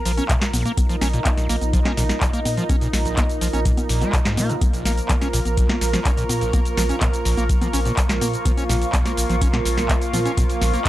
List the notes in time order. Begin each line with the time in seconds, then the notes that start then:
Already playing: F3 A#3 F4 A#4 A#5
0.05 A#1 F3, open hi-hat, shaker
0.17 C#4, closed hi-hat, high conga, shaker
0.29 A#2, kick, clap, closed hi-hat, shaker
0.41 snare, clap, closed hi-hat, shaker
0.53 A#1 A#2, open hi-hat, high conga, shaker
0.65 A#3, closed hi-hat, shaker
0.77 D#4, kick, closed hi-hat, high conga, shaker
0.89 F3, closed hi-hat, shaker
1.01 A#1 C#4, snare, open hi-hat, high conga, shaker
1.13 A#2, closed hi-hat, shaker
1.25 kick, clap, closed hi-hat, high conga, shaker
1.37 A#1, snare, closed hi-hat, shaker
1.49 A#1 A#3, open hi-hat, shaker
1.61 A#1, closed hi-hat, high conga, shaker
1.73 F3, kick, closed hi-hat, shaker
1.85 C#4, snare, clap, closed hi-hat, high conga
1.97 A#1 A#2, snare, open hi-hat, shaker
2.09 snare, closed hi-hat, high conga, shaker
2.21 A#1, kick, clap, closed hi-hat, shaker
2.33 A#3, closed hi-hat, shaker
2.45 A#2, open hi-hat, high conga, shaker
2.57 F3, closed hi-hat, shaker
2.69 C#4, kick, closed hi-hat, high conga, shaker
2.81 A#2, closed hi-hat, shaker
2.93 A#1, snare, open hi-hat, high conga, shaker
3.05 A#1, closed hi-hat, shaker
3.17 A#3, kick, clap, closed hi-hat, high conga, shaker
3.29 closed hi-hat, shaker
3.41 A#1 F3, open hi-hat, shaker
3.53 A#1 C#4, closed hi-hat, high conga, shaker
3.65 A#2, kick, closed hi-hat, shaker
3.77 closed hi-hat, high conga, shaker
3.89 A#1 A#2, open hi-hat, shaker
4.01 G#3, closed hi-hat, high conga, shaker
4.13 G#2, kick, clap, closed hi-hat, shaker
4.25 G#2, snare, clap, closed hi-hat, shaker
4.37 A#2 A#3, open hi-hat, high conga, shaker
4.49 A#2, closed hi-hat, shaker
4.61 A#4, kick, closed hi-hat, high conga, shaker
4.73 A#1, closed hi-hat, shaker
4.85 A#1 A#3, snare, open hi-hat, high conga, shaker
4.97 closed hi-hat, shaker
5.09 F3, kick, clap, closed hi-hat, high conga, shaker
5.21 C#4, snare, closed hi-hat, shaker
5.33 A#1 A#2, open hi-hat, shaker
5.41 C#6
5.45 A#1, closed hi-hat, high conga, shaker
5.57 A#1, kick, closed hi-hat, shaker
5.69 A#3, snare, clap, closed hi-hat, high conga
5.81 A#1, snare, open hi-hat, shaker
5.93 F3, snare, closed hi-hat, high conga, shaker
6.05 C#4, kick, clap, closed hi-hat, shaker
6.17 A#2, closed hi-hat, shaker
6.29 A#2, open hi-hat, high conga, shaker
6.41 A#1, closed hi-hat, shaker
6.53 A#3, kick, closed hi-hat, high conga, shaker
6.65 closed hi-hat, shaker
6.77 A#1 F3, snare, open hi-hat, high conga, shaker
6.89 C#4, closed hi-hat, shaker
7.01 A#2, kick, clap, closed hi-hat, high conga, shaker
7.13 closed hi-hat, shaker
7.25 A#1, open hi-hat, shaker
7.37 A#1 A#3, closed hi-hat, high conga, shaker
7.49 kick, closed hi-hat, shaker
7.61 F3, closed hi-hat, high conga, shaker
7.73 A#1 C#4, open hi-hat, shaker
7.85 A#2, closed hi-hat, high conga, shaker
7.97 kick, clap, closed hi-hat, shaker
8.09 A#1, snare, clap, closed hi-hat, shaker
8.21 A#2 A#3, open hi-hat, high conga, shaker
8.33 closed hi-hat, shaker
8.45 F3 F4, kick, closed hi-hat, high conga, shaker
8.57 C#4, closed hi-hat, shaker
8.69 A#1 A#2, snare, open hi-hat, high conga, shaker
8.81 closed hi-hat, shaker
8.93 A#1, kick, clap, closed hi-hat, high conga, shaker
9.05 A#3, snare, closed hi-hat, shaker
9.17 A#1, open hi-hat, shaker
9.29 A#1 F3, closed hi-hat, high conga, shaker
9.41 C#4, kick, closed hi-hat, shaker
9.53 A#2, snare, clap, closed hi-hat, high conga
9.65 A#1, snare, open hi-hat, shaker
9.77 A#1, snare, closed hi-hat, high conga, shaker
9.89 A#3, kick, clap, closed hi-hat, shaker
10.01 closed hi-hat, shaker
10.13 A#2 F3, open hi-hat, high conga, shaker
10.25 C#4, closed hi-hat, shaker
10.37 A#2, kick, closed hi-hat, high conga, shaker
10.50 closed hi-hat, shaker
10.61 A#1, snare, open hi-hat, high conga, shaker
10.73 A#3, closed hi-hat, shaker
10.85 kick, clap, closed hi-hat, high conga